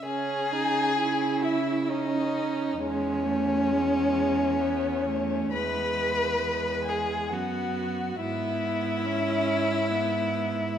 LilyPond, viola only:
\new Staff \with { instrumentName = "Viola" } { \time 3/4 \key cis \minor \tempo 4 = 67 cis'8 dis'8 e'4 cis'4 | gis8 a8 gis4 b8 a8 | gis4 gis4 b4 | b4 cis'4 b4 | }